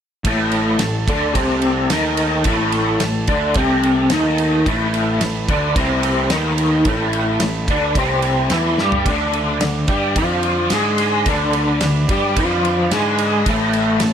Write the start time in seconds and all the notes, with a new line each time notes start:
0.24 A1 A2 A3 A4, kick, ride
0.52 ride
0.79 A1 A2, snare, ride
1.07 D2 D3 D4, kick, ride
1.35 C2 C3 C4, kick, ride
1.62 ride
1.90 D#2 D#3 D#4, snare, ride
2.17 ride
2.44 A1 A2 A3, kick, ride
2.72 ride
3.00 A1 A2, snare, ride
3.27 D2 D3 D4, kick, ride
3.54 C2 C3 C4, kick, ride
3.83 ride
4.10 D#2 D#3 D#4, snare, ride
4.38 ride
4.66 A1 A2 A3 B4, kick, ride
4.94 ride
5.21 A1 A2, snare, ride
5.48 D2 D3 D4, kick, ride
5.76 C2 C3 C4, kick, ride
6.03 ride
6.30 D#2 D#3 D#4, snare, ride
6.58 ride
6.85 A1 A2 A3, kick, ride
7.13 ride
7.40 A1 A2, snare, ride
7.68 D2 D3 D4, kick, ride
7.95 C2 C3 C4, kick, ride
8.22 ride
8.50 E2 E3 E4, snare, ride
8.78 G2 G3 G4, snare
8.92 floor tom
9.05 D2 D3 D4, kick, ride
9.33 ride
9.61 D2 D3, snare, ride
9.87 G2 G3 G4, kick, ride
10.15 F2 F3 F4, kick, ride
10.43 ride
10.70 G#2 G#3 G#4, snare, ride
10.98 ride
11.26 D2 D3 D4 B4, kick, ride
11.53 ride
11.81 D2 D3, snare, ride
12.08 G2 G3 G4, kick, ride
12.36 F2 F3 F4, kick, ride
12.65 ride
12.91 G#2 G#3 G#4, snare, ride
13.19 ride
13.46 A1 A2 A3 A4, kick, ride
13.73 ride
14.00 A1, snare, ride
14.04 A2